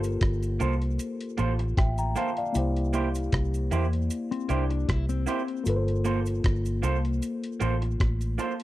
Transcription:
0.00 0.17 G1 medium
0.00 2.50 A#3 medium
0.00 2.51 F4 medium
0.00 2.56 G4 soft
0.00 2.52 A4 medium
0.00 2.57 A#4 medium
0.00 2.53 C5 medium
0.00 cabasa medium
0.04 closed hi-hat soft
0.21 0.58 G1 medium
0.21 kick loud
0.21 cross-stick medium
0.21 closed hi-hat medium
0.43 closed hi-hat soft
0.43 cabasa soft
0.60 0.97 C2 medium
0.60 0.73 A#3 medium
0.60 0.74 F4 medium
0.60 0.74 A4 medium
0.60 0.74 C5 medium
0.60 closed hi-hat medium
0.60 cabasa medium
0.82 closed hi-hat soft
0.99 closed hi-hat medium
0.99 cabasa medium
1.21 closed hi-hat medium
1.37 1.75 A1 medium
1.37 1.51 A#3 medium
1.37 1.51 F4 medium
1.37 1.52 A4 medium
1.37 1.52 C5 medium
1.37 closed hi-hat medium
1.37 cabasa soft
1.59 muted clean electric guitar stroke soft
1.59 closed hi-hat medium
1.77 2.14 A1 medium
1.77 1.98 E5 medium
1.77 1.97 G5 medium
1.77 kick loud
1.77 cross-stick loud
1.77 closed hi-hat medium
1.98 2.16 G5 soft
1.98 2.15 A#5 medium
1.98 closed hi-hat soft
1.98 cabasa soft
2.16 2.29 A#3 medium
2.16 2.29 F4 medium
2.16 2.30 A4 medium
2.16 2.30 C5 medium
2.16 2.37 F5 medium
2.16 2.37 A5 medium
2.16 closed hi-hat medium
2.16 cabasa medium
2.37 2.75 D5 medium
2.37 2.75 F5 medium
2.37 closed hi-hat medium
2.52 3.29 C2 loud
2.52 5.61 A#3 medium
2.52 5.62 E4 medium
2.52 closed hi-hat medium
2.52 cabasa medium
2.56 5.63 G4 medium
2.56 5.64 C5 medium
2.76 closed hi-hat soft
2.93 3.07 A#3 medium
2.93 3.07 E4 medium
2.93 3.07 G4 medium
2.93 3.08 C5 medium
2.93 closed hi-hat medium
2.93 cabasa soft
3.15 closed hi-hat soft
3.15 cabasa medium
3.32 3.69 C2 medium
3.32 kick loud
3.32 cross-stick loud
3.32 closed hi-hat medium
3.54 closed hi-hat soft
3.54 cabasa soft
3.71 4.08 E2 medium
3.71 3.85 A#3 medium
3.71 3.85 E4 medium
3.71 3.85 G4 medium
3.71 3.86 C5 loud
3.71 closed hi-hat medium
3.71 cabasa medium
3.93 closed hi-hat soft
4.10 closed hi-hat medium
4.10 cabasa medium
4.31 4.49 C4 medium
4.31 closed hi-hat medium
4.49 4.86 C2 medium
4.49 4.62 A#3 medium
4.49 4.88 D4 medium
4.49 4.63 E4 medium
4.49 4.63 G4 medium
4.49 4.63 C5 medium
4.49 closed hi-hat medium
4.49 cabasa soft
4.70 muted clean electric guitar stroke soft
4.70 closed hi-hat soft
4.88 5.25 C2 medium
4.88 5.09 E4 medium
4.88 kick loud
4.88 cross-stick loud
4.88 closed hi-hat medium
5.09 5.63 C4 medium
5.09 closed hi-hat soft
5.09 cabasa soft
5.27 5.40 A#3 medium
5.27 5.41 E4 medium
5.27 5.41 G4 medium
5.27 5.41 C5 medium
5.27 closed hi-hat medium
5.27 cabasa medium
5.48 closed hi-hat soft
5.64 6.40 G1 loud
5.64 8.63 A#3 medium
5.64 8.63 F4 medium
5.64 closed hi-hat medium
5.64 cabasa medium
5.68 8.63 A4 medium
5.68 5.75 B4 medium
5.76 8.63 C5 medium
5.88 closed hi-hat soft
6.05 6.18 A#3 medium
6.05 6.18 F4 medium
6.05 6.19 A4 medium
6.05 6.19 C5 medium
6.05 closed hi-hat medium
6.05 cabasa soft
6.26 closed hi-hat soft
6.26 cabasa medium
6.44 6.81 G1 medium
6.44 kick loud
6.44 cross-stick loud
6.44 closed hi-hat medium
6.65 closed hi-hat soft
6.65 cabasa soft
6.82 7.20 C2 medium
6.82 6.96 A#3 medium
6.82 6.96 F4 medium
6.82 6.97 A4 medium
6.82 6.97 C5 medium
6.82 closed hi-hat medium
6.82 cabasa medium
7.05 closed hi-hat soft
7.22 closed hi-hat medium
7.22 cabasa medium
7.44 closed hi-hat medium
7.60 7.98 A1 medium
7.60 7.74 A#3 medium
7.60 7.74 F4 medium
7.60 7.74 A4 medium
7.60 7.75 C5 loud
7.60 closed hi-hat medium
7.60 cabasa soft
7.82 muted clean electric guitar stroke soft
7.82 closed hi-hat medium
8.00 8.37 A1 medium
8.00 kick loud
8.00 cross-stick loud
8.00 closed hi-hat medium
8.21 closed hi-hat soft
8.21 cabasa soft
8.38 8.52 A#3 medium
8.38 8.52 F4 medium
8.38 8.52 A4 medium
8.38 8.53 C5 medium
8.38 closed hi-hat medium
8.38 cabasa medium
8.60 closed hi-hat medium

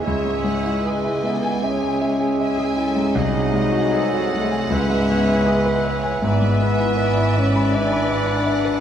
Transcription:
0.03 3.16 C#2 medium
0.03 3.17 C#2 medium
0.03 1.33 G#3 medium
0.03 1.22 G#3 medium
0.03 1.34 G#4 medium
0.03 0.81 C#5 medium
0.03 0.42 E5 medium
0.03 1.33 E5 medium
0.03 0.84 E5 medium
0.03 1.37 G#5 medium
0.07 3.14 C#2 medium
0.25 0.56 G#2 soft
0.43 0.76 G#3 soft
0.43 0.83 F#5 medium
0.63 0.96 E4 medium
0.83 1.17 G#4 medium
0.83 1.23 B4 medium
0.83 1.64 D#5 medium
0.83 2.40 G#5 medium
1.05 1.37 E4 medium
1.24 1.64 B3 medium
1.24 1.64 A4 medium
1.24 1.57 E5 medium
1.44 1.76 G#5 medium
1.63 3.17 G#3 medium
1.63 3.16 C#4 medium
1.63 3.12 G#4 medium
1.63 2.39 G#4 medium
1.63 2.41 C#5 medium
1.63 1.95 E5 medium
1.63 3.12 E5 medium
1.63 3.14 G#5 medium
1.82 2.14 G#5 medium
2.01 2.32 E5 medium
2.21 2.52 G#5 medium
2.40 2.78 G#4 medium
2.40 2.71 E5 medium
2.40 3.15 E5 medium
2.40 3.15 G#5 medium
2.58 2.89 G#4 medium
2.76 3.08 E4 medium
2.76 3.16 A4 medium
2.96 3.16 G#2 medium
3.15 4.68 C2 medium
3.15 4.72 C2 medium
3.15 4.74 F#3 medium
3.15 4.33 D#4 loud
3.15 3.94 G#4 medium
3.15 3.53 G#4 medium
3.15 4.74 D#5 medium
3.15 3.93 D#5 medium
3.15 6.24 F#5 medium
3.15 4.69 G#5 medium
3.34 3.65 C3 medium
3.53 3.85 G#3 medium
3.53 4.70 G#4 medium
3.71 4.04 F#4 medium
3.92 4.24 G#4 medium
3.92 4.74 A4 medium
3.92 4.32 C5 medium
4.13 4.45 F#4 medium
4.33 4.72 A3 medium
4.33 4.71 C5 medium
4.33 4.64 F#5 medium
4.51 4.71 G#5 medium
4.70 6.19 C#2 medium
4.70 6.21 C#2 medium
4.70 6.23 E3 medium
4.70 6.07 G#3 medium
4.70 5.11 B4 medium
4.70 6.23 B4 medium
4.70 5.48 E5 medium
4.70 6.24 E5 medium
4.70 6.21 G#5 medium
4.90 5.21 G#2 medium
5.09 5.40 B3 medium
5.09 5.48 C#5 medium
5.29 5.60 E4 medium
5.47 5.78 G#4 medium
5.47 6.23 B4 medium
5.47 5.86 D#5 medium
5.66 5.97 B4 medium
5.85 6.23 C#5 medium
5.85 6.16 E5 medium
6.04 6.23 G#5 medium
6.22 8.80 G#1 medium
6.22 8.80 G#2 medium
6.22 7.71 E3 medium
6.22 7.35 B3 loud
6.22 7.72 B4 medium
6.22 6.98 B4 medium
6.22 6.60 D5 medium
6.22 7.72 E5 medium
6.22 7.75 E5 medium
6.22 7.72 G#5 medium
6.42 6.72 G#3 medium
6.61 6.91 B3 medium
6.61 7.74 E5 medium
6.80 7.10 E4 medium
6.97 7.29 B4 medium
6.97 8.80 D5 medium
7.17 7.48 E4 medium
7.37 7.75 C#4 medium
7.37 7.67 E5 medium
7.56 7.86 B5 medium
7.74 8.80 E3 medium
7.74 8.80 D4 loud
7.74 8.80 B4 medium
7.74 8.47 B4 medium
7.74 8.04 E5 medium
7.74 8.80 E5 medium
7.74 8.11 G#5 medium
7.74 8.80 G#5 medium
7.92 8.22 B5 medium
8.11 8.40 E5 medium
8.11 8.80 F#5 medium
8.27 8.57 B5 medium
8.46 8.80 B4 medium
8.46 8.77 E5 medium
8.65 8.80 B4 medium

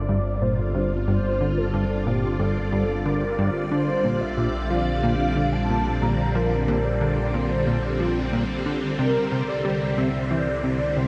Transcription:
0.00 3.68 G1 medium
0.00 11.08 D3 medium
0.00 11.08 G3 medium
0.00 11.08 C4 medium
0.00 0.55 D4 medium
0.00 8.99 F4 medium
0.00 0.53 G4 medium
0.00 0.36 C5 medium
0.00 0.43 D5 medium
0.00 10.69 D5 medium
0.09 0.20 G2 loud
0.42 0.60 A#2 medium
0.42 0.91 C5 loud
0.75 0.93 G2 medium
1.07 1.19 G2 medium
1.07 1.58 C5 loud
1.41 1.59 D3 medium
1.57 2.08 A4 medium
1.74 1.85 G2 loud
2.06 2.25 A#2 medium
2.06 2.41 G4 medium
2.39 2.58 G2 medium
2.39 3.06 A4 loud
2.73 2.84 G2 medium
3.05 3.24 D3 medium
3.05 3.55 A#4 loud
3.38 3.50 G2 loud
3.71 8.96 A#1 medium
3.71 3.90 D3 medium
3.71 4.22 C5 loud
4.04 4.23 A#2 medium
4.20 4.71 E5 loud
4.37 4.48 A#2 medium
4.70 4.89 F3 medium
4.70 5.02 F5 loud
5.03 5.14 A#2 loud
5.03 5.54 F5 loud
5.36 5.55 D3 medium
5.52 6.03 A5 loud
5.69 5.88 A#2 medium
6.02 6.13 A#2 medium
6.02 6.36 A#5 loud
6.35 6.54 F3 medium
6.35 6.86 A#4 loud
6.68 6.79 A#2 medium
6.85 7.35 D5 loud
7.01 7.20 D3 medium
7.34 7.53 A#2 medium
7.34 8.33 C5 loud
7.67 7.78 A#2 medium
8.00 8.18 F3 medium
8.33 8.44 A#2 loud
8.66 8.84 D3 medium
8.99 11.08 C2 medium
8.99 11.08 A2 loud
8.99 9.17 C3 medium
8.99 9.50 A#4 medium
9.32 9.43 C3 medium
9.48 9.99 D5 medium
9.65 9.83 G3 medium
9.98 10.09 C3 loud
9.98 10.32 E5 medium
10.31 10.49 E3 medium
10.31 10.98 D5 loud
10.51 11.08 E4 loud
10.64 10.82 C3 medium
10.97 11.08 C3 medium
10.97 11.08 C5 loud

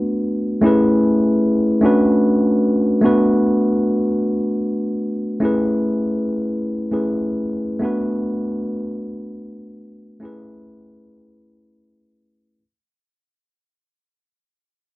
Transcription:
0.00 0.59 A3 medium
0.00 0.59 B3 medium
0.00 0.60 D4 medium
0.00 0.61 F#4 medium
0.00 0.61 B4 medium
0.61 1.80 A3 medium
0.61 1.80 C#4 medium
0.61 1.81 E4 medium
0.65 1.82 G#4 medium
0.65 1.82 B4 medium
1.81 3.00 A3 medium
1.81 3.00 C#4 medium
1.81 3.01 D4 medium
1.81 3.01 F#4 medium
1.86 3.02 B4 medium
3.01 5.38 A3 medium
3.01 5.38 B3 medium
3.01 5.39 D4 medium
3.01 5.40 F#4 medium
3.06 5.40 B4 medium
5.40 6.88 A3 medium
5.40 6.89 C#4 medium
5.40 6.89 E4 medium
5.40 6.90 G#4 medium
5.45 6.91 B4 medium
6.91 7.78 A3 medium
6.91 7.82 C#4 medium
6.91 7.82 E4 medium
6.91 7.83 G#4 medium
6.91 7.83 B4 medium
7.80 10.17 A3 medium
7.80 10.18 B3 medium
7.80 10.18 D4 medium
7.80 10.19 F#4 medium
7.85 10.19 B4 medium
10.20 12.57 A3 medium
10.20 12.58 C#4 medium
10.20 12.58 E4 medium
10.20 12.59 G#4 medium
10.25 12.60 B4 medium

